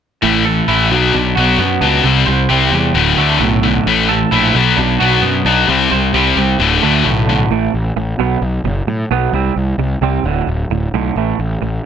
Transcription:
0.22 A1 A2 E3 A3
0.45 A2 E3 A4
0.68 A1 A2 E3 A3 E4
0.91 B1 B2 F#3 B3
1.14 B1 B2 F#3 D4
1.36 B1 B2 F#3 B3 F#4
1.59 F#2 B2 F#3 B3
1.81 C#2 B2 F#3 B3 D4
2.03 C2 C3 G3 C4
2.26 C2 C3 G3 C5
2.49 C2 C3 G3 C4 G4
2.71 E2 C3 G3 C4
2.94 D1 D2 A2 D3
3.18 D2 A2 D3 A3
3.40 B1 D2 A2
3.63 D2 A2 D3
3.86 A1 A2 E3 A3
4.09 A2 E3 A4
4.31 A#1 A2 E3 A3 E4
4.54 B1 B2 F#3 B3
4.77 B1 B2 F#3 D4
4.99 B1 B2 F#3 B3 F#4
5.22 F#2 B2 F#3 B3
5.45 B1 B2 F#3 B3 D4
5.68 C2 C3 G3 C4
5.91 C2 C3 G3 C5
6.14 C2 C3 G3 C4 G4
6.36 C2 C3 G3 C4
6.59 D1 D2 A2 D3
6.82 D2 A2 D3 A3
7.05 B1 D2 A2
7.28 D2 A2 D3
7.51 A1 A2 E3 A3
7.73 A1 A2 E3
7.96 A1 A2 E3
8.19 B1 B2 F#3 B3
8.41 B1 B2
8.64 F#1 B2 F#3
8.87 A2 B2 F#3
9.11 B1 B2 F#3 B3
9.33 C2 C3 G3 C4
9.56 C2 C3 G3
9.78 C2 C3 G3
10.01 C2 C3 G3 C4
10.24 D1 D2 A2 D3
10.47 D1 D2 A2
10.70 D1 D2 A2
10.94 B1 D2 A2 D3
11.16 A1 A2 E3 A3
11.39 A1 A2 E3
11.62 A1 A2 E3

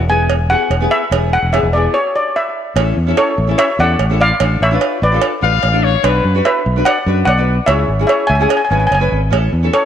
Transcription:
0.00 E1
0.08 B3 E4 G#4 G#5
0.30 cowbell
0.50 B3 E4 G#4 F#5
0.70 E1, cowbell
0.80 B3 E4 G#4
0.91 E5
1.11 E1 B3 E4 G#4, cowbell
1.33 F#5
1.42 E1
1.52 B3 E4 G#4 E5, cowbell
1.63 E1
1.73 B3 E4 G#4 D5
1.94 C#5
2.16 D5
2.36 E5
2.76 A1 C#4 E4 A4, cowbell
2.97 E2
3.07 C#4 E4 A4
3.17 A4 C#5, cowbell
3.38 A1
3.47 C#4 E4 A4
3.58 C#5 E5, cowbell
3.79 E2 C#4 E4 A4 D5 F#5
3.99 A1, cowbell
4.10 C#4 E4 A4
4.21 D5 F5
4.40 A1 D4 F4 A4, cowbell
4.61 A1 C#5 E5
4.71 D4 F4 B4
4.81 cowbell
5.02 A1 B4 D5
5.12 D4 F4 A4
5.22 cowbell
5.41 A1 D4 F4 B4 F5
5.63 A1, cowbell
5.72 D4 F4 A4
5.84 C#5
6.03 B1 D4 F#4 B4, cowbell
6.24 F#2
6.34 D4 F#4 B4
6.45 B4 E5, cowbell
6.66 B1
6.76 D4 F#4 B4
6.85 D5 F#5, cowbell
7.06 F#2 D4 F#4 B4
7.25 B1 D5 F#5, cowbell
7.37 D4 F#4 B4
7.66 C#2 C#4 E4 G#4 C#5 E5, cowbell
7.88 G#1
7.99 C#4 E4 G#4
8.07 C#5 E5, cowbell
8.27 C#2 E5 G#5
8.35 G#5
8.39 C#4 E4 G#4 G#5
8.49 G#5, cowbell
8.57 G#5
8.65 G#5
8.70 G#1 C#4 E4 B4 G#5
8.80 G#5
8.87 G#5
8.91 F#1 G#5, cowbell
9.00 C#4 E4 B4
9.12 G#1
9.30 A1 C#4 E4 A4, cowbell
9.53 E2
9.63 C#4 E4 A4
9.73 A4 C#5, cowbell

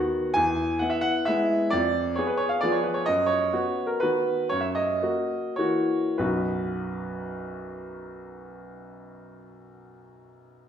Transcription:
Already playing: D#3 B3 F#4 F#5
0.34 E2 G#5
0.79 B3 E4 F#5
0.90 E5
1.01 F#5
1.25 G#3 B3 E4 E5
1.70 F2 D5
2.16 B3 G#4 C#5
2.27 B4
2.37 C#5
2.49 F5
2.61 F3 B3 G#4 D5
2.72 C#5
2.83 B4
2.94 C#5
3.06 F#2 D#5
3.26 C#5
3.53 B3 F#4
3.87 A#4
4.00 D#3 B3 F#4 B4
4.49 F#2 C#5
4.61 E5
4.75 D#5
5.02 A#3 F#4
5.56 E3 A#3 F#4 C#5
6.18 B1 F#2 F#3 B3 D#4 F#4 B4

